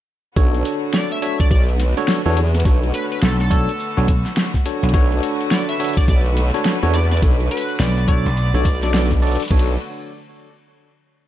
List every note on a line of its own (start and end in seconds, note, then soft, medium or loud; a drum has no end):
0.36 0.63 B1 loud
0.36 9.47 D3 medium
0.36 9.47 A3 medium
0.36 4.90 B3 medium
0.36 1.20 D4 loud
0.36 1.20 F#4 medium
0.36 9.47 F#4 medium
0.36 1.20 A4 medium
0.36 1.20 C#5 loud
0.36 kick loud
0.36 open hi-hat soft
0.54 open hi-hat soft
0.65 open hi-hat medium
0.94 1.08 D5 medium
0.94 snare loud
0.94 open hi-hat soft
1.11 1.37 E5 loud
1.11 open hi-hat soft
1.22 1.49 D4 medium
1.22 1.49 F#4 medium
1.22 1.49 A4 medium
1.22 1.49 C#5 medium
1.22 open hi-hat medium
1.40 1.47 D5 medium
1.40 kick loud
1.40 open hi-hat soft
1.51 1.94 B1 loud
1.51 1.62 D5 medium
1.51 kick loud
1.51 open hi-hat soft
1.69 open hi-hat soft
1.80 snare soft
1.80 open hi-hat medium
1.97 2.21 D4 loud
1.97 2.21 F#4 medium
1.97 2.21 A4 medium
1.97 2.21 C#5 loud
1.97 snare soft
1.97 open hi-hat soft
2.08 snare loud
2.08 open hi-hat soft
2.26 2.64 E2 loud
2.26 2.39 D4 loud
2.26 2.39 F#4 medium
2.26 2.39 A4 medium
2.26 2.39 C#5 loud
2.26 open hi-hat soft
2.37 open hi-hat medium
2.54 snare soft
2.54 open hi-hat soft
2.60 closed hi-hat medium
2.65 2.92 B1 loud
2.65 3.48 D4 medium
2.65 3.48 F#4 medium
2.65 3.48 A4 medium
2.65 3.48 C#5 medium
2.65 kick loud
2.65 snare soft
2.65 open hi-hat soft
2.83 open hi-hat soft
2.94 3.05 B4 medium
2.94 open hi-hat medium
3.11 3.18 B4 medium
3.11 open hi-hat soft
3.23 3.66 B1 loud
3.23 3.37 A4 loud
3.23 snare loud
3.23 open hi-hat soft
3.40 3.97 A4 loud
3.40 snare soft
3.40 open hi-hat soft
3.51 3.70 D4 loud
3.51 3.70 F#4 medium
3.51 3.70 A4 medium
3.51 3.70 C#5 loud
3.51 kick loud
3.51 open hi-hat medium
3.69 open hi-hat soft
3.80 open hi-hat soft
3.97 4.23 B1 loud
3.97 4.10 D4 loud
3.97 4.10 F#4 medium
3.97 4.10 A4 medium
3.97 4.10 C#5 loud
3.97 open hi-hat soft
4.08 kick loud
4.08 open hi-hat medium
4.26 snare soft
4.26 open hi-hat soft
4.37 snare loud
4.37 open hi-hat soft
4.54 kick medium
4.54 snare soft
4.54 open hi-hat soft
4.66 4.91 D4 medium
4.66 4.91 F#4 medium
4.66 4.91 A4 medium
4.66 4.91 C#5 loud
4.66 open hi-hat medium
4.83 4.92 B1 loud
4.83 open hi-hat soft
4.89 closed hi-hat medium
4.94 5.21 B1 loud
4.94 5.77 D4 medium
4.94 5.77 F#4 medium
4.94 5.77 A4 medium
4.94 9.47 B4 medium
4.94 5.77 C#5 loud
4.94 kick loud
4.94 open hi-hat soft
5.12 open hi-hat soft
5.23 open hi-hat medium
5.41 open hi-hat soft
5.51 5.65 D5 medium
5.51 snare loud
5.51 open hi-hat soft
5.69 5.94 E5 loud
5.69 open hi-hat soft
5.80 6.06 D4 medium
5.80 6.06 F#4 medium
5.80 6.06 A4 medium
5.80 6.06 C#5 medium
5.80 open hi-hat medium
5.84 open hi-hat medium
5.89 open hi-hat soft
5.93 6.04 D5 medium
5.93 kick loud
5.93 open hi-hat soft
5.98 open hi-hat soft
6.00 open hi-hat soft
6.03 open hi-hat soft
6.06 6.51 B1 loud
6.06 kick loud
6.06 open hi-hat soft
6.08 6.20 D5 medium
6.08 open hi-hat soft
6.26 open hi-hat soft
6.37 snare soft
6.37 open hi-hat medium
6.54 6.78 D4 loud
6.54 6.78 F#4 medium
6.54 6.78 A4 medium
6.54 6.78 C#5 loud
6.54 snare soft
6.54 open hi-hat soft
6.65 snare loud
6.65 open hi-hat soft
6.83 7.21 E2 loud
6.83 6.96 D4 loud
6.83 6.96 F#4 medium
6.83 6.96 A4 medium
6.83 6.96 C#5 loud
6.83 open hi-hat soft
6.94 7.05 D5 medium
6.94 open hi-hat medium
7.11 7.19 D5 medium
7.11 snare soft
7.11 open hi-hat soft
7.17 closed hi-hat medium
7.22 7.49 B1 loud
7.22 8.06 D4 medium
7.22 8.06 F#4 medium
7.22 8.06 A4 medium
7.22 8.06 C#5 medium
7.22 kick loud
7.22 snare soft
7.22 open hi-hat soft
7.40 open hi-hat soft
7.51 7.77 B4 loud
7.51 open hi-hat medium
7.57 open hi-hat medium
7.61 open hi-hat soft
7.69 open hi-hat soft
7.79 8.23 B1 loud
7.79 8.05 D5 medium
7.79 snare loud
7.79 open hi-hat soft
7.83 open hi-hat soft
7.86 open hi-hat soft
7.89 open hi-hat soft
7.94 snare soft
7.94 open hi-hat soft
7.97 open hi-hat soft
8.08 8.27 D4 loud
8.08 8.27 F#4 medium
8.08 8.27 A4 medium
8.08 8.27 C#5 loud
8.08 8.79 D5 loud
8.08 kick loud
8.08 open hi-hat medium
8.26 8.51 B1 loud
8.26 open hi-hat soft
8.37 open hi-hat soft
8.54 9.37 B1 loud
8.54 8.68 D4 medium
8.54 8.67 F#4 medium
8.54 8.67 A4 medium
8.54 8.67 C#5 loud
8.54 open hi-hat soft
8.65 kick loud
8.65 open hi-hat medium
8.83 9.20 D4 medium
8.83 9.20 F#4 medium
8.83 9.20 A4 medium
8.83 8.90 D5 medium
8.83 9.20 D5 medium
8.83 snare soft
8.83 open hi-hat soft
8.94 9.05 D5 medium
8.94 snare loud
8.94 open hi-hat soft
9.11 kick medium
9.11 snare soft
9.11 open hi-hat soft
9.22 9.41 D4 medium
9.22 9.41 F#4 medium
9.22 9.41 A4 medium
9.22 9.41 D5 medium
9.22 open hi-hat soft
9.27 open hi-hat soft
9.31 open hi-hat soft
9.35 open hi-hat soft
9.40 open hi-hat medium
9.42 open hi-hat medium
9.45 open hi-hat medium
9.48 9.77 B1 loud
9.48 9.77 D3 medium
9.48 9.77 A3 medium
9.48 9.77 B3 medium
9.48 9.74 D4 medium
9.48 9.77 F#4 medium
9.48 9.74 F#4 medium
9.48 9.74 A4 medium
9.48 9.74 C#5 loud
9.48 kick loud
9.48 open hi-hat medium
9.48 crash medium
9.59 closed hi-hat medium